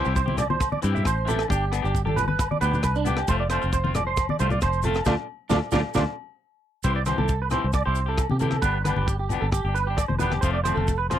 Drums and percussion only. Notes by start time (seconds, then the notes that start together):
0.05 maracas
0.16 kick, maracas
0.28 high conga
0.37 cross-stick, closed hi-hat, low conga, low agogo, maracas
0.50 high conga
0.60 kick, cross-stick, low agogo, maracas
0.72 high conga
0.82 closed hi-hat, maracas
0.96 low conga, maracas
1.05 kick, cross-stick, low agogo, maracas
1.27 closed hi-hat, low conga, maracas
1.39 cross-stick, low agogo, maracas
1.50 kick, maracas
1.72 cross-stick, closed hi-hat, low agogo, maracas
1.85 maracas
1.95 kick, maracas
2.07 high conga
2.17 closed hi-hat, low conga, low agogo, maracas
2.28 high conga
2.39 kick, cross-stick, low agogo, maracas
2.51 high conga
2.61 closed hi-hat, maracas
2.73 low conga, maracas
2.83 kick, cross-stick, low agogo, maracas
2.95 maracas
3.05 closed hi-hat, low conga, maracas
3.17 cross-stick, low agogo, maracas
3.28 kick, maracas
3.50 cross-stick, closed hi-hat, low agogo, maracas
3.62 maracas
3.73 kick, maracas
3.84 high conga
3.95 cross-stick, closed hi-hat, low conga, low agogo, maracas
4.17 kick, cross-stick, low agogo, maracas
4.29 high conga
4.39 closed hi-hat, maracas
4.50 low conga, maracas
4.61 kick, cross-stick, low agogo, maracas
4.73 maracas
4.82 closed hi-hat, low conga, maracas
4.94 cross-stick, low agogo, maracas
5.05 kick, snare, low conga, low agogo, maracas
5.50 kick, snare, low conga, low agogo, maracas
5.71 kick, snare, low conga, low agogo, maracas
5.94 kick, snare, low conga, low agogo, maracas
6.83 kick, maracas
7.06 cross-stick, closed hi-hat, high conga, low agogo, maracas
7.18 high conga
7.28 kick, maracas
7.50 cross-stick, closed hi-hat, low conga, low agogo, maracas
7.73 kick, cross-stick, low agogo, maracas
7.95 closed hi-hat, maracas
8.18 kick, cross-stick, low agogo, maracas
8.30 high conga
8.39 closed hi-hat, high conga, low conga, maracas
8.51 cross-stick, high conga, low agogo
8.62 kick, maracas
8.85 cross-stick, closed hi-hat, high conga, low agogo, maracas
8.96 high conga
9.08 kick, maracas
9.29 closed hi-hat, low conga, low agogo, maracas
9.51 kick, cross-stick, low agogo, maracas
9.76 closed hi-hat, maracas
9.97 kick, cross-stick, low agogo, maracas
10.09 high conga
10.19 closed hi-hat, high conga, low conga, maracas
10.31 cross-stick, high conga, low agogo
10.43 kick, maracas
10.65 cross-stick, closed hi-hat, high conga, low agogo, maracas
10.78 high conga
10.88 kick, maracas
11.10 cross-stick, closed hi-hat, low conga, low agogo